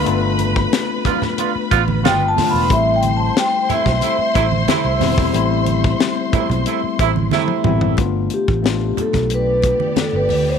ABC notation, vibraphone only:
X:1
M:4/4
L:1/16
Q:1/4=91
K:Gmix
V:1 name="Vibraphone"
z12 (3g2 a2 b2 | (3e2 g2 a2 g2 e8- e2- | e12 z4 | z2 G4 A2 B4 A B2 c |]